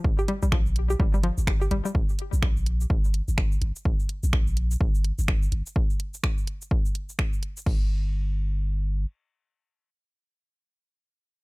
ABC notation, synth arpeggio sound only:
X:1
M:4/4
L:1/16
Q:"Swing 16ths" 1/4=126
K:Fmix
V:1 name="Synth arpeggio sound" clef=bass
z G G, G, F, z2 G G, G, F, z2 G G, G, | z16 | z16 | z16 |
z16 | z16 |]